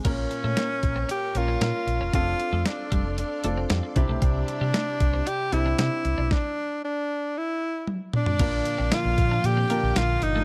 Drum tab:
CC |x---------------|----------------|----------------|----------------|
HH |x-x-x-x-x-x-x-x-|x-x-x-x-x-x-x-x-|x-x-x-x-x-x-x-x-|----------------|
TB |----------------|----------------|----------------|----------------|
SD |----o-------o---|----o-------o---|----o-------o---|o---------------|
T1 |----------------|----------------|----------------|------------o---|
T2 |----------------|----------------|----------------|--------------o-|
FT |----------------|----------------|----------------|---------------o|
BD |o-----o---------|o-----o-------o-|o-----o---------|o---------------|

CC |x---------------|
HH |x-x-x-x-x-x-x-x-|
TB |----x-------x---|
SD |----o-------o---|
T1 |----------------|
T2 |----------------|
FT |----------------|
BD |o-----o---------|